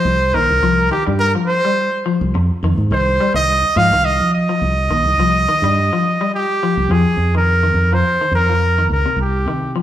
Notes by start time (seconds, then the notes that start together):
Already playing: F3 C5
0.05 C2
0.33 A#1 D#3 A#4
0.49 C2
0.62 C2 F3
0.91 D#3 G4
1.07 G2 G3
1.19 A#4
1.35 F3
1.47 C5
1.65 G3
2.06 F3
2.21 C2
2.34 F2, muted clean electric guitar stroke
2.63 F2 D#3
2.78 G#2
2.91 C2 D#3 C5
3.20 G3
3.34 C2 D#3 D#5
3.62 muted fingered electric bass stroke
3.76 G#2 F3 F5
3.91 C2 D#3
4.05 D#5
4.20 F3
4.34 D#5
4.49 F3
4.62 C2
4.90 A#1 D#3
5.05 C2
5.18 C2 F3
5.49 D#3
5.62 G2 G3
5.93 F3
6.21 G3
6.34 G4
6.63 F3
6.77 C2
6.89 F2 F3 G#4
7.17 F2
7.35 D#3 A#4
7.63 D#3
7.74 F2
7.93 F3 C5
8.21 D#3
8.32 F2 A#4
8.49 F3
8.78 D#3
8.89 C#2 A#4
9.06 C3
9.17 C2
9.21 G4
9.46 C3 D#3
9.76 F3